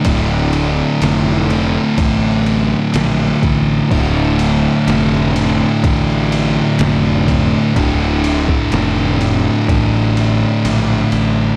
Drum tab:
CC |----------------|x---------------|----------------|
RD |x-x-x-x-x-x-x-x-|--x-x-x-x-x-x-x-|x-x-x-x-x-x-x-x-|
SD |----o-------o---|----o-------o---|----o-----------|
BD |o-------o-----o-|o-------o-----o-|o--o----o-------|